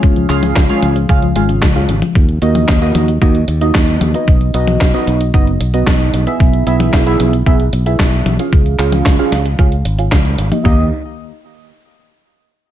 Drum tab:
HH |xxxxxxxxxxxxxxxx|xxxxxxxxxxxxxxxx|xxxxxxxxxxxxxxxx|xxxxxxxxxxxxxxxx|
CP |--x-x-------x---|----x-------x---|----x-------x---|----x-------x---|
SD |----o-------o---|----o-------o---|----o-------o---|----o-------o---|
T1 |---o--o-----o--o|---o--o-------o-|---o--------o---|---o--o-------o-|
FT |----------------|----------------|----------------|----------------|
BD |o---o---o---o---|o---o---o---o---|o---o---o---o---|o---o---o---o---|

HH |xxxxxxxxxxxxxxxx|----------------|
CP |--x-x-------x---|----------------|
SD |----o-o-----o---|----------------|
T1 |---o--------o--o|----------------|
FT |----------------|o---------------|
BD |o---o---o---o---|o---------------|